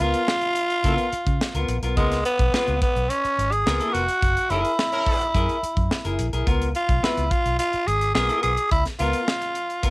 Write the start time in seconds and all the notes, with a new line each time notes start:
0.00 C#2 B3 F4 A#4
0.14 closed hi-hat
0.28 snare
0.41 closed hi-hat
0.56 closed hi-hat
0.70 closed hi-hat
0.84 C#3 B3 F4 A#4, kick, closed hi-hat
0.98 closed hi-hat
1.13 muted fingered electric bass stroke, closed hi-hat
1.27 C#3, kick, closed hi-hat
1.41 snare
1.54 C#2 B3 F4 A#4, closed hi-hat
1.68 A#1, closed hi-hat
1.82 B1 B3 F4 A#4, closed hi-hat
1.97 C#2 G#3 B3 F4 A#4, kick, closed hi-hat
2.12 snare, closed hi-hat
2.25 B3, closed hi-hat
2.39 B1, kick, closed hi-hat
2.54 B3 F4 B4, muted fingered electric bass stroke, snare
2.68 C#2, closed hi-hat
2.82 B3, kick, closed hi-hat
2.96 B1, closed hi-hat
3.10 C#4, closed hi-hat
3.24 muted fingered electric bass stroke, closed hi-hat
3.38 G#1, closed hi-hat
3.52 G#4, closed hi-hat
3.66 C#2 B3 F4 A#4, snare
3.80 B3 F4 A#4, closed hi-hat
3.93 F1 F#4, closed hi-hat
4.09 closed hi-hat
4.22 F#1, kick, closed hi-hat
4.37 closed hi-hat
4.50 F#1 C#4 E4 G#4 A#4, closed hi-hat
4.65 closed hi-hat
4.79 snare
4.93 C#4 E4 A#4, closed hi-hat
5.07 kick, open hi-hat
5.21 closed hi-hat
5.35 F#2 E4 G#4 A#4, kick, closed hi-hat
5.49 closed hi-hat
5.63 muted fingered electric bass stroke, closed hi-hat
5.77 F#2, kick, closed hi-hat
5.91 snare
6.05 F#1 E4 G#4 A#4, closed hi-hat
6.19 A#1, closed hi-hat
6.33 B1 E4 G#4 A#4, closed hi-hat
6.47 C#2 B3 F4 A#4, kick, closed hi-hat
6.62 closed hi-hat
6.75 F4, closed hi-hat
6.89 B1, kick, closed hi-hat
7.03 B3 E4 F4 B4, muted fingered electric bass stroke, snare
7.17 C#2, closed hi-hat
7.31 F4, kick, closed hi-hat
7.46 B1, closed hi-hat
7.59 F4, closed hi-hat
7.73 muted fingered electric bass stroke, closed hi-hat
7.87 G#1 G#4, closed hi-hat
8.01 closed hi-hat
8.15 B1 B3 F4 G#4 A#4, snare
8.29 B3 F4 A#4, closed hi-hat
8.43 B1 G#4, closed hi-hat
8.57 closed hi-hat
8.71 C#2 E4, kick, closed hi-hat
8.85 snare, closed hi-hat
8.99 C#2 B3 F4 A#4, closed hi-hat
9.13 closed hi-hat
9.28 snare
9.42 closed hi-hat
9.55 closed hi-hat
9.70 closed hi-hat
9.83 B3 F4 A#4, kick, closed hi-hat